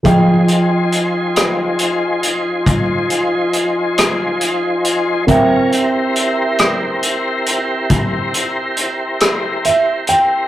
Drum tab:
HH |xxxxxxxxxxxx|xxxxxxxxxxxx|
SD |---r-----r--|---r-----r--|
BD |o-----o-----|o-----o-----|